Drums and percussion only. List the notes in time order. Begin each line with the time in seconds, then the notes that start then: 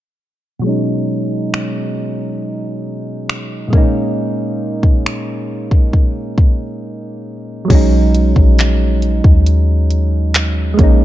1.54 finger snap
3.30 finger snap
3.73 kick
4.83 kick
5.06 finger snap
5.71 kick
5.93 kick
6.38 kick
7.70 kick, closed hi-hat, crash
8.15 closed hi-hat
8.36 kick
8.59 clap, closed hi-hat
9.02 closed hi-hat
9.24 kick
9.46 closed hi-hat
9.90 closed hi-hat
10.35 clap
10.79 kick, closed hi-hat